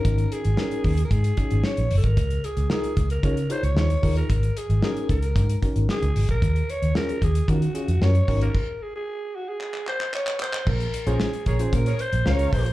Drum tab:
CC |----------------|----------------|----------------|----------------|
HH |xxxx-xoxxxxx-xox|xxxx-xxxxxxx-xox|xxxx-xxxxxxx-xox|xxxx-xxxxxxx-xox|
CP |----------------|----------------|----------------|----------------|
SD |----o-------o---|----o-------o---|----o-------o---|----o-------o---|
BD |o-----o-o-o----o|o-----o-o-----o-|o-----o-o-o----o|o-----o-o-----o-|

CC |x---------------|x---------------|
HH |----------------|-xxx-xxxxxxx-xox|
CP |--------xxxxxxxx|----------------|
SD |----------------|----o-------o---|
BD |o---------------|o-----o-o-----o-|